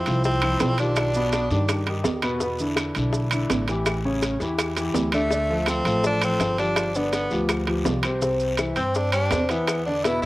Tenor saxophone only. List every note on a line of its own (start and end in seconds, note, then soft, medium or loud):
0.00 0.25 C4 medium
0.25 0.75 C4 medium
0.80 1.84 D4 medium
5.14 5.70 A3 medium
5.69 6.05 C4 medium
6.06 6.22 D4 loud
6.24 6.57 C4 medium
6.59 6.97 D4 medium
6.96 7.14 B3 medium
7.14 7.47 B3 medium
8.76 8.97 C4 medium
8.95 9.13 D4 medium
9.13 9.51 D4 medium
9.49 9.86 B3 medium
9.86 10.06 D4 medium
10.04 10.21 E4 medium
10.22 10.26 E4 medium